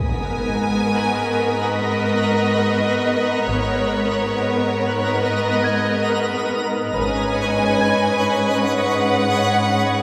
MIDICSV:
0, 0, Header, 1, 9, 480
1, 0, Start_track
1, 0, Time_signature, 4, 2, 24, 8
1, 0, Key_signature, 5, "minor"
1, 0, Tempo, 869565
1, 5533, End_track
2, 0, Start_track
2, 0, Title_t, "Celesta"
2, 0, Program_c, 0, 8
2, 0, Control_c, 0, 64, 127
2, 7, Control_c, 0, 64, 0
2, 109, Control_c, 0, 64, 127
2, 971, Note_on_c, 0, 95, 20
2, 1440, Note_on_c, 0, 94, 17
2, 2382, Note_off_c, 0, 95, 0
2, 2857, Note_off_c, 0, 94, 0
2, 3114, Note_on_c, 0, 92, 26
2, 3832, Note_on_c, 0, 71, 19
2, 3832, Note_on_c, 0, 83, 20
2, 3849, Control_c, 0, 64, 0
2, 3931, Control_c, 0, 64, 127
2, 4304, Note_off_c, 0, 92, 0
2, 4311, Note_on_c, 0, 92, 28
2, 5253, Note_off_c, 0, 71, 0
2, 5253, Note_off_c, 0, 83, 0
2, 5533, Note_off_c, 0, 92, 0
2, 5533, End_track
3, 0, Start_track
3, 0, Title_t, "Violin section"
3, 0, Program_c, 1, 48
3, 4, Note_on_c, 1, 87, 18
3, 6, Note_on_c, 1, 95, 20
3, 475, Note_on_c, 1, 85, 21
3, 2619, Note_off_c, 1, 87, 0
3, 3574, Note_off_c, 1, 85, 0
3, 3580, Note_off_c, 1, 95, 0
3, 5533, End_track
4, 0, Start_track
4, 0, Title_t, "Violin section"
4, 0, Program_c, 2, 48
4, 0, Note_on_c, 2, 80, 39
4, 933, Note_off_c, 2, 80, 0
4, 960, Note_on_c, 2, 75, 42
4, 1900, Note_off_c, 2, 75, 0
4, 1918, Note_on_c, 2, 73, 38
4, 2859, Note_off_c, 2, 73, 0
4, 2872, Note_on_c, 2, 75, 42
4, 3595, Note_off_c, 2, 75, 0
4, 3830, Note_on_c, 2, 80, 49
4, 4772, Note_off_c, 2, 80, 0
4, 4794, Note_on_c, 2, 78, 52
4, 5533, Note_off_c, 2, 78, 0
4, 5533, End_track
5, 0, Start_track
5, 0, Title_t, "Synth texture"
5, 0, Program_c, 3, 99
5, 0, Note_on_c, 3, 59, 44
5, 0, Note_on_c, 3, 70, 43
5, 0, Note_on_c, 3, 75, 41
5, 1893, Note_off_c, 3, 59, 0
5, 1894, Note_off_c, 3, 70, 0
5, 1894, Note_off_c, 3, 75, 0
5, 1905, Note_on_c, 3, 59, 43
5, 1906, Note_on_c, 3, 70, 46
5, 1906, Note_on_c, 3, 75, 46
5, 3810, Note_off_c, 3, 59, 0
5, 3810, Note_off_c, 3, 70, 0
5, 3810, Note_off_c, 3, 75, 0
5, 3838, Note_on_c, 3, 73, 45
5, 3841, Note_on_c, 3, 83, 46
5, 3842, Note_on_c, 3, 75, 47
5, 5533, Note_off_c, 3, 73, 0
5, 5533, Note_off_c, 3, 75, 0
5, 5533, Note_off_c, 3, 83, 0
5, 5533, End_track
6, 0, Start_track
6, 0, Title_t, "Violin section"
6, 0, Program_c, 4, 48
6, 11, Note_on_c, 4, 59, 23
6, 11, Note_on_c, 4, 70, 25
6, 1902, Note_off_c, 4, 59, 0
6, 1902, Note_off_c, 4, 70, 0
6, 1914, Note_on_c, 4, 59, 25
6, 1915, Note_on_c, 4, 70, 25
6, 3814, Note_off_c, 4, 59, 0
6, 3814, Note_off_c, 4, 70, 0
6, 3842, Note_on_c, 4, 61, 30
6, 3842, Note_on_c, 4, 71, 31
6, 5533, Note_off_c, 4, 61, 0
6, 5533, Note_off_c, 4, 71, 0
6, 5533, End_track
7, 0, Start_track
7, 0, Title_t, "Cello section"
7, 0, Program_c, 5, 48
7, 2, Note_on_c, 5, 44, 29
7, 1898, Note_off_c, 5, 44, 0
7, 1915, Note_on_c, 5, 44, 28
7, 3814, Note_off_c, 5, 44, 0
7, 3834, Note_on_c, 5, 44, 39
7, 5533, Note_off_c, 5, 44, 0
7, 5533, End_track
8, 0, Start_track
8, 0, Title_t, "Double bass section"
8, 0, Program_c, 6, 48
8, 1, Note_on_c, 6, 32, 27
8, 457, Note_off_c, 6, 32, 0
8, 1921, Note_on_c, 6, 32, 30
8, 2377, Note_off_c, 6, 32, 0
8, 3837, Note_on_c, 6, 32, 33
8, 4295, Note_off_c, 6, 32, 0
8, 5533, End_track
9, 0, Start_track
9, 0, Title_t, "Impact"
9, 0, Program_c, 7, 103
9, 0, Note_on_c, 7, 60, 26
9, 1918, Note_off_c, 7, 60, 0
9, 5533, End_track
0, 0, End_of_file